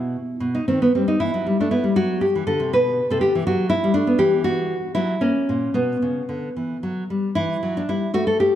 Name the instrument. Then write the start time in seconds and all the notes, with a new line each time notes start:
nylon-string guitar
Already playing: B2 E4
0.40 B2
0.55 D#4
0.68 D#3 C4
0.82 B3
0.95 G3 C4
1.08 D#4
1.20 E3 E4
1.34 F#3
1.47 G3
1.60 A3 D4
1.71 B3 E4
1.84 G3
1.96 F#3 F#4
2.21 G4
2.35 E3
2.47 D3 A4
2.60 C3
2.73 B2 B4
3.10 C3 A4
3.21 D3 G4
3.35 E3
3.47 F#3 F#4
3.70 E4
3.84 G3
3.94 A3 D4
4.07 B3
4.18 E3 G4
4.44 F#4
4.95 F#3 E4
5.21 A#3 C#4
5.49 A#2
5.74 B2 B3
6.02 C#3
6.29 D3
6.56 E3
6.83 F#3
7.10 G3
7.35 E3 E4
7.63 F#3
7.77 D4
7.89 G3 E4
8.14 A3 F#4
8.27 A4
8.40 G4